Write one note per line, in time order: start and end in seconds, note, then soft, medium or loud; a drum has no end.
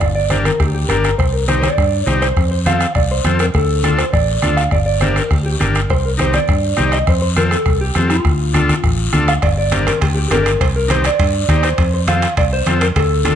0.00 0.48 G1 medium
0.00 0.05 D5 medium
0.00 bombo low medium
0.00 bombo rim medium
0.00 long guiro medium
0.15 0.29 D5 medium
0.30 0.51 D4 medium
0.30 0.51 G4 medium
0.30 0.52 A#4 medium
0.30 0.35 C5 medium
0.30 bombo rim medium
0.30 high conga medium
0.30 short guiro medium
0.45 0.59 A#4 medium
0.45 bombo rim medium
0.45 high conga medium
0.45 short guiro medium
0.60 0.84 D2 medium
0.60 0.65 G4 medium
0.60 bombo low medium
0.60 bombo rim medium
0.60 long guiro medium
0.74 0.90 G4 medium
0.89 1.12 G1 medium
0.89 1.10 D4 medium
0.89 1.10 G4 medium
0.89 1.16 A#4 medium
0.89 1.11 A#4 medium
0.89 bombo rim medium
0.89 high conga medium
0.89 short guiro medium
1.04 bombo rim medium
1.04 short guiro medium
1.18 1.66 C2 medium
1.18 1.33 C5 medium
1.18 bombo low medium
1.18 bombo rim medium
1.18 long guiro medium
1.33 1.48 A#4 medium
1.48 1.69 D#4 medium
1.48 1.69 G4 medium
1.48 1.62 C5 medium
1.48 1.69 C5 medium
1.48 bombo rim medium
1.48 high conga medium
1.48 short guiro medium
1.63 2.10 D5 medium
1.63 bombo rim medium
1.63 high conga medium
1.63 short guiro medium
1.78 2.01 G2 medium
1.78 bombo low medium
1.78 bombo rim medium
1.78 long guiro medium
2.06 2.31 C2 medium
2.06 2.27 D#4 medium
2.06 2.28 G4 medium
2.06 2.28 C5 medium
2.06 2.21 C5 medium
2.06 bombo rim medium
2.06 high conga medium
2.06 short guiro medium
2.22 2.50 C5 medium
2.22 bombo rim medium
2.22 short guiro medium
2.37 2.84 F2 medium
2.37 bombo low medium
2.37 bombo rim medium
2.37 long guiro medium
2.51 2.56 C5 medium
2.66 2.86 C4 medium
2.66 2.87 F4 medium
2.66 2.87 A4 medium
2.66 2.94 F5 medium
2.66 bombo rim medium
2.66 high conga medium
2.66 short guiro medium
2.80 bombo rim medium
2.80 short guiro medium
2.95 3.19 C2 medium
2.95 3.01 D5 medium
2.95 bombo low medium
2.95 bombo rim medium
2.95 long guiro medium
3.11 3.40 C5 medium
3.25 3.49 F2 loud
3.25 3.46 C4 medium
3.25 3.46 F4 medium
3.25 3.46 A4 medium
3.25 bombo rim medium
3.25 high conga medium
3.25 short guiro medium
3.39 3.45 A#4 medium
3.39 bombo rim medium
3.39 short guiro medium
3.54 4.02 D2 medium
3.54 3.96 A4 medium
3.54 bombo low medium
3.54 bombo rim medium
3.54 long guiro medium
3.83 4.05 D4 medium
3.83 4.05 F4 medium
3.83 4.05 A4 medium
3.83 bombo rim medium
3.83 high conga medium
3.83 short guiro medium
3.98 4.12 C5 medium
3.98 bombo rim medium
3.98 short guiro medium
4.13 4.37 A1 medium
4.13 4.54 D5 medium
4.13 bombo low medium
4.13 bombo rim medium
4.13 long guiro medium
4.42 4.66 D2 loud
4.42 4.63 D4 medium
4.42 4.64 F4 medium
4.42 4.64 A4 medium
4.42 bombo rim medium
4.42 high conga medium
4.42 short guiro medium
4.57 4.72 F5 medium
4.57 bombo rim medium
4.57 short guiro medium
4.71 5.19 G1 medium
4.71 4.77 D5 medium
4.71 bombo low medium
4.71 bombo rim medium
4.71 long guiro medium
4.86 5.00 D5 medium
5.01 5.22 D4 medium
5.01 5.22 G4 medium
5.01 5.23 A#4 medium
5.01 5.17 C5 medium
5.01 bombo rim medium
5.01 high conga medium
5.01 short guiro medium
5.16 5.31 A#4 medium
5.16 bombo rim medium
5.16 short guiro medium
5.31 5.54 D2 medium
5.31 5.45 G4 medium
5.31 bombo low medium
5.31 bombo rim medium
5.31 long guiro medium
5.46 5.51 G4 medium
5.60 5.84 G1 loud
5.60 5.81 D4 medium
5.60 5.81 G4 medium
5.60 5.81 A#4 medium
5.60 5.90 A#4 medium
5.60 bombo rim medium
5.60 high conga medium
5.60 short guiro medium
5.75 bombo rim medium
5.75 short guiro medium
5.90 6.37 C2 medium
5.90 6.05 C5 medium
5.90 bombo low medium
5.90 bombo rim medium
5.90 long guiro medium
6.06 6.11 A#4 medium
6.17 6.39 D#4 medium
6.17 6.39 G4 medium
6.17 6.40 C5 medium
6.17 6.34 C5 medium
6.17 bombo rim medium
6.17 high conga medium
6.17 short guiro medium
6.33 6.89 D5 medium
6.33 bombo rim medium
6.33 high conga medium
6.33 short guiro medium
6.48 6.72 G2 medium
6.48 bombo low medium
6.48 bombo rim medium
6.48 long guiro medium
6.77 7.01 C2 loud
6.77 6.98 D#4 medium
6.77 6.98 G4 medium
6.77 6.99 C5 medium
6.77 bombo rim medium
6.77 high conga medium
6.77 short guiro medium
6.92 7.08 D#5 medium
6.92 bombo rim medium
6.92 short guiro medium
7.07 7.55 F2 medium
7.07 7.21 C5 medium
7.07 bombo low medium
7.07 bombo rim medium
7.07 long guiro medium
7.22 7.27 C5 medium
7.36 7.57 C4 medium
7.36 7.57 F4 medium
7.36 7.58 A4 medium
7.36 7.43 A#4 medium
7.36 bombo rim medium
7.36 high conga medium
7.36 short guiro medium
7.51 7.79 A4 medium
7.51 bombo rim medium
7.51 short guiro medium
7.66 7.90 C2 medium
7.66 bombo low medium
7.66 bombo rim medium
7.66 long guiro medium
7.81 8.08 G4 medium
7.95 8.19 F2 loud
7.95 8.16 C4 medium
7.95 8.16 F4 medium
7.95 8.17 A4 medium
7.95 bombo rim medium
7.95 high conga medium
7.95 short guiro medium
8.10 9.09 F4 medium
8.10 bombo rim medium
8.10 short guiro medium
8.25 8.72 D2 medium
8.25 bombo low medium
8.25 bombo rim medium
8.25 long guiro medium
8.54 8.75 D4 medium
8.54 8.75 F4 medium
8.54 8.75 A4 medium
8.54 bombo rim medium
8.54 high conga medium
8.54 short guiro medium
8.69 bombo rim medium
8.69 high conga medium
8.69 short guiro medium
8.84 9.07 A1 medium
8.84 bombo low medium
8.84 bombo rim medium
8.84 long guiro medium
9.13 9.37 D2 loud
9.13 9.34 D4 medium
9.13 9.34 F4 medium
9.13 9.34 A4 medium
9.13 bombo rim medium
9.13 high conga medium
9.13 short guiro medium
9.28 9.34 F5 medium
9.28 bombo rim medium
9.28 short guiro medium
9.42 9.90 G1 medium
9.42 9.48 D5 medium
9.42 bombo low medium
9.42 bombo rim medium
9.42 high timbale medium
9.42 long guiro medium
9.58 9.72 D5 medium
9.72 9.92 D4 medium
9.72 9.93 G4 medium
9.72 9.93 A#4 medium
9.72 9.87 C5 medium
9.72 bombo rim medium
9.72 high conga medium
9.72 high timbale medium
9.72 short guiro medium
9.87 10.02 A#4 medium
9.87 bombo rim medium
9.87 high conga medium
9.87 high timbale medium
9.87 short guiro medium
10.01 10.25 D2 medium
10.01 10.16 G4 medium
10.01 bombo low medium
10.01 bombo rim medium
10.01 high timbale medium
10.01 long guiro medium
10.17 10.30 G4 medium
10.30 10.55 G1 medium
10.30 10.51 D4 medium
10.30 10.52 G4 medium
10.30 10.61 A#4 medium
10.30 10.52 A#4 medium
10.30 bombo rim medium
10.30 high conga medium
10.30 high timbale medium
10.30 low timbale medium
10.30 short guiro medium
10.46 bombo rim medium
10.46 high timbale medium
10.46 short guiro medium
10.61 11.08 C2 medium
10.61 10.66 C5 medium
10.61 bombo low medium
10.61 bombo rim medium
10.61 high timbale medium
10.61 long guiro medium
10.76 10.89 A#4 medium
10.88 11.09 D#4 medium
10.88 11.10 G4 medium
10.88 11.10 C5 medium
10.88 11.04 C5 medium
10.88 bombo rim medium
10.88 high conga medium
10.88 high timbale medium
10.88 short guiro medium
11.04 11.60 D5 medium
11.04 bombo rim medium
11.04 high timbale medium
11.04 short guiro medium
11.19 11.43 G2 medium
11.19 bombo low medium
11.19 bombo rim medium
11.19 high timbale medium
11.19 long guiro medium
11.49 11.72 D#2 loud
11.49 11.69 D#4 medium
11.49 11.70 G4 medium
11.49 11.70 C5 medium
11.49 bombo low medium
11.49 bombo rim medium
11.49 high conga medium
11.49 high timbale medium
11.49 short guiro medium
11.63 11.91 C5 loud
11.63 bombo rim medium
11.63 high timbale medium
11.63 short guiro medium
11.78 12.25 F2 medium
11.78 bombo low medium
11.78 bombo rim medium
11.78 high timbale medium
11.78 long guiro medium
11.94 11.99 C5 medium
12.07 12.28 C4 medium
12.07 12.28 F4 medium
12.07 12.28 A4 medium
12.07 12.35 F5 medium
12.07 bombo rim medium
12.07 high conga medium
12.07 high timbale medium
12.07 short guiro medium
12.22 bombo rim medium
12.22 high timbale medium
12.22 short guiro medium
12.37 12.61 C2 medium
12.37 12.43 D5 medium
12.37 bombo low medium
12.37 bombo rim medium
12.37 high timbale medium
12.37 long guiro medium
12.53 12.80 C5 medium
12.66 12.90 F2 loud
12.66 12.87 C4 medium
12.66 12.87 F4 medium
12.66 12.87 A4 medium
12.66 bombo rim medium
12.66 high conga medium
12.66 high timbale medium
12.66 short guiro medium
12.81 12.86 A#4 medium
12.81 bombo rim medium
12.81 high timbale medium
12.81 short guiro medium
12.96 13.35 D2 medium
12.96 13.35 A4 medium
12.96 bombo low medium
12.96 bombo rim medium
12.96 high timbale medium
12.96 long guiro medium
13.24 13.35 D4 medium
13.24 13.35 F4 medium
13.24 13.35 A4 medium
13.24 bombo rim medium
13.24 high conga medium
13.24 high timbale medium
13.24 short guiro medium